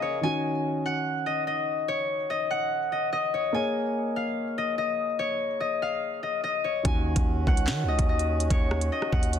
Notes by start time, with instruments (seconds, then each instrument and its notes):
Already playing: harmonium C#3 A#3 G#4, grand piano A#3 G#4, harp D#5 F5
0.02 harp C#5
0.21 grand piano D#3 C#4 F#4, harp G#5
0.86 harp F#5
1.26 harp D#5
1.47 harp D#5
1.88 harp C#5
2.30 harp D#5
2.51 harp F#5
2.92 harp D#5
3.13 harp D#5
3.34 harp C#5
3.53 grand piano A#3 G#4 C#5, harp G#5
4.16 harp F5
4.58 harp D#5
4.78 harp D#5
5.19 harp C#5
5.60 harp D#5
5.82 harp F5
6.23 harp D#5
6.44 harp D#5
6.64 harp C#5
6.83 808-style bass D#2, grand piano D#3 C#4 F#4, harmonium D#3 C#4 F#4, harp G#5, kick, closed hi-hat
7.16 808-style bass D#2, kick, closed hi-hat
7.47 808-style bass C#2, harp F#5, kick
7.57 closed hi-hat
7.67 808-style bass D#3, snare, clap, closed hi-hat
7.83 808-style bass C#2
7.88 harp D#5
7.99 808-style bass D#2, kick, closed hi-hat
8.09 harp D#5
8.19 closed hi-hat
8.40 closed hi-hat
8.50 808-style bass D#2, harp C#5, kick, closed hi-hat
8.71 cross-stick
8.81 closed hi-hat
8.92 harp D#5
9.02 cross-stick
9.12 808-style bass D#2, harp F#5, kick
9.23 closed hi-hat
9.33 closed hi-hat